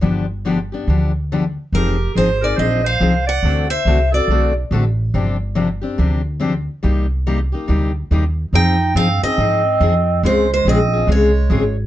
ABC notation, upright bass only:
X:1
M:4/4
L:1/8
Q:"Swing" 1/4=141
K:Cm
V:1 name="Upright bass" clef=bass
G,,,4 D,,4 | F,,,2 A,,,2 B,,,2 C,,2 | D,,2 C,,2 =B,,,2 =A,,,2 | G,,,4 D,,4 |
C,,4 D,,2 E,,2 | [K:Fm] F,,2 G,, z A,,2 F,,2 | D,,2 B,,,2 C,,2 A,,,2 |]